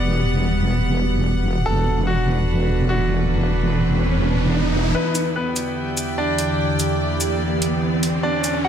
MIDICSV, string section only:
0, 0, Header, 1, 2, 480
1, 0, Start_track
1, 0, Key_signature, 1, "minor"
1, 0, Tempo, 410959
1, 18, Time_signature, 4, 2, 24, 8
1, 10143, End_track
2, 0, Start_track
2, 0, Title_t, "String section"
2, 0, Program_c, 0, 48
2, 0, Note_on_c, 0, 55, 78
2, 0, Note_on_c, 0, 59, 78
2, 0, Note_on_c, 0, 78, 88
2, 1936, Note_on_c, 0, 62, 76
2, 1937, Note_off_c, 0, 55, 0
2, 2218, Note_on_c, 0, 71, 79
2, 3361, Note_off_c, 0, 59, 0
2, 5776, Note_on_c, 0, 64, 78
2, 5778, Note_off_c, 0, 78, 0
2, 6114, Note_on_c, 0, 74, 81
2, 6437, Note_off_c, 0, 71, 0
2, 6437, Note_on_c, 0, 79, 84
2, 6949, Note_off_c, 0, 62, 0
2, 9616, Note_off_c, 0, 79, 0
2, 9618, Note_on_c, 0, 52, 75
2, 9928, Note_on_c, 0, 62, 93
2, 9957, Note_on_c, 0, 71, 81
2, 10143, Note_off_c, 0, 52, 0
2, 10143, Note_off_c, 0, 62, 0
2, 10143, Note_off_c, 0, 64, 0
2, 10143, Note_off_c, 0, 71, 0
2, 10143, Note_off_c, 0, 74, 0
2, 10143, End_track
0, 0, End_of_file